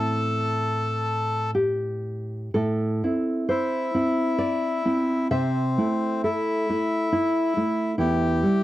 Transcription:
Already playing: A2 C4 E4 A4
1.55 G4
2.54 A2 A4
3.04 C4 E4
3.49 E4 C5
3.95 C4 E4
4.38 D5
4.85 C4 E4
5.31 C3 C4 E5
5.78 A3 E4
6.24 E4 A4
6.69 A3 E4
7.12 E4
7.57 A3 E4
7.98 E2 E4 G4
8.43 G3 E4

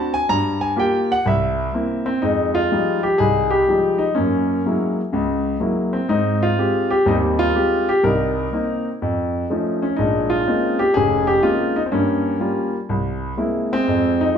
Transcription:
Already playing: C4 D4 F#4 A5
0.14 G#5
0.29 G2 A#5
0.61 G#5
0.76 A#3 F4 G4 G5
1.12 F#5
1.26 C2 E5
1.74 A#3 C4 E4
2.06 C4
2.22 F2 G#3 D#4
2.55 F4
2.72 F3 G3 G#3 D#4
3.03 G4
3.18 C2 D#4 G#4
3.50 G4
3.68 F3 G3 G#3 D#4
3.98 D#4
4.15 F#2 A#3 C#4
4.66 F#3 G#3 A#3 E4
5.12 C#2 C#3
5.60 F#3 G#3 A#3 E4
5.93 C4
6.09 G#2 C4 D#4
6.43 F4
6.58 G#3 C4 G4
6.91 G4
7.06 D#2 G3 C4 D#4
7.39 F4
7.54 G#3 C4 G4
7.89 G4
8.03 C2 C3 D#4 A#4
8.53 A#3 C4 D#4
9.02 F2
9.50 F3 A3 C#4 D#4
9.82 C#4
9.96 A#1 G#3 D#4
10.30 F4
10.46 G#3 A#3 C4 C#4 D#4
10.79 G4
10.94 F1 C#4 G#4
11.27 G4
11.43 G#3 A#3 C4 C#4 D#4 F4
11.76 D#4
11.86 C4
11.92 G2 A#3 C#4
12.40 G3 A#3 F4
12.89 C2
13.37 G#3 A#3 C4 E4
13.73 G#3 C4
13.88 F2
14.21 D#4
14.35 D#4

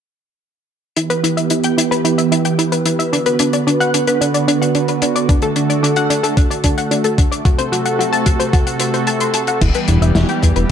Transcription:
0.97 E3 B3 E4 G4 B4, closed hi-hat
1.10 B4, closed hi-hat
1.24 E4, closed hi-hat
1.37 E5, closed hi-hat
1.50 E4, closed hi-hat
1.64 G5, closed hi-hat
1.78 E4, closed hi-hat
1.91 B4, closed hi-hat
2.05 E4, closed hi-hat
2.18 E5, closed hi-hat
2.32 E4, closed hi-hat
2.45 G5, closed hi-hat
2.59 E4, closed hi-hat
2.72 B4, closed hi-hat
2.86 E4, closed hi-hat
2.99 E5, closed hi-hat
3.13 D3 B3 D4 F#4, closed hi-hat
3.26 B4, closed hi-hat
3.39 D4, closed hi-hat
3.53 D5, closed hi-hat
3.67 D4, closed hi-hat
3.80 F#5, closed hi-hat
3.94 D4, closed hi-hat
4.07 B4, closed hi-hat
4.21 D4, closed hi-hat
4.34 D5, closed hi-hat
4.48 D4, closed hi-hat
4.62 F#5, closed hi-hat
4.75 D4, closed hi-hat
4.88 B4, closed hi-hat
5.02 D4, closed hi-hat
5.16 D5, closed hi-hat
5.29 A3 D4 A4, kick, closed hi-hat
5.42 A4, closed hi-hat
5.56 D4, closed hi-hat
5.70 D5, closed hi-hat
5.83 D4, closed hi-hat
5.96 F#5, closed hi-hat
6.10 D4, closed hi-hat
6.23 A4, closed hi-hat
6.37 D4, kick, closed hi-hat
6.50 D5, closed hi-hat
6.64 D4, kick, closed hi-hat
6.78 F#5, closed hi-hat
6.91 D4, closed hi-hat
7.04 A4, closed hi-hat
7.18 D4, kick, closed hi-hat
7.32 D5, closed hi-hat
7.45 C3 F#4 A4, kick, closed hi-hat
7.58 C5, closed hi-hat
7.72 F#4, closed hi-hat
7.86 F#5, closed hi-hat
7.99 F#4, closed hi-hat
8.13 A5, closed hi-hat
8.26 F#4, kick, closed hi-hat
8.40 C5, closed hi-hat
8.53 F#4, kick, closed hi-hat
8.67 F#5, closed hi-hat
8.80 C5, closed hi-hat
8.94 C5, closed hi-hat
9.07 A5, closed hi-hat
9.20 C6, closed hi-hat
9.34 A5, closed hi-hat
9.47 F#5, closed hi-hat
9.61 E1 E3 G3 B3 E4 G4, kick, closed hi-hat, crash
9.75 B4, closed hi-hat
9.88 E1 E4, closed hi-hat
10.02 E1 E5, closed hi-hat
10.15 E1 E4, snare, closed hi-hat
10.29 G5, closed hi-hat
10.43 E2 E4, kick, closed hi-hat
10.56 E1 B4, closed hi-hat

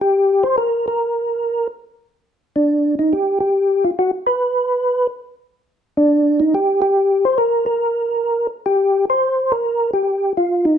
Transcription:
0.01 G4
0.43 C5
0.58 A#4
0.88 A#4
2.56 D4
2.99 D#4
3.13 G4
3.40 G4
3.85 F4
3.99 F#4
4.27 B4
5.97 D4
6.40 D#4
6.55 G4
6.82 G4
7.25 C5
7.38 A#4
7.66 A#4
8.66 G4
9.10 C5
9.52 A#4
9.93 G4
10.37 F4
10.65 D#4

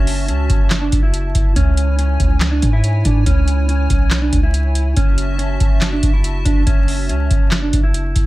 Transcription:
Already playing: F#1 C#4 F#4 E5 A5
0.07 open hi-hat
0.28 C#2 C#4, closed hi-hat
0.50 F#1, kick, closed hi-hat
0.70 snare, clap, closed hi-hat
0.81 D4
0.92 F#1, kick, closed hi-hat
1.03 E4
1.14 closed hi-hat
1.35 F#1, kick, closed hi-hat
1.56 C#2 C#4 E4 C#5 G#5, kick, closed hi-hat
1.77 closed hi-hat
1.99 C#4, closed hi-hat
2.20 C#2, kick, closed hi-hat
2.41 snare, clap, closed hi-hat
2.51 D4
2.62 G#2, kick, closed hi-hat
2.73 E4
2.84 closed hi-hat
3.05 G#2 D4, kick, closed hi-hat
3.26 C#2 C#4, kick, closed hi-hat
3.48 closed hi-hat
3.68 C#4, closed hi-hat
3.90 B1, kick, closed hi-hat
4.11 snare, clap, closed hi-hat
4.22 D4
4.33 C#2, kick, closed hi-hat
4.43 E4
4.54 closed hi-hat
4.75 closed hi-hat
4.96 F#1 C#4 F#4 E5 A5, kick, closed hi-hat
5.18 closed hi-hat
5.38 C#4, closed hi-hat
5.60 F#1, kick, closed hi-hat
5.81 snare, clap, closed hi-hat
5.93 D4
6.03 F#1, kick, closed hi-hat
6.14 E4
6.24 closed hi-hat
6.45 F#1 D4, kick, closed hi-hat
6.67 F#1 C#4, kick, closed hi-hat
6.88 open hi-hat
7.09 C#2 C#4, closed hi-hat
7.31 F#1, kick, closed hi-hat
7.51 snare, clap, closed hi-hat
7.62 D4
7.73 F#1, kick, closed hi-hat
7.83 E4
7.94 closed hi-hat
8.16 F#1, kick, closed hi-hat

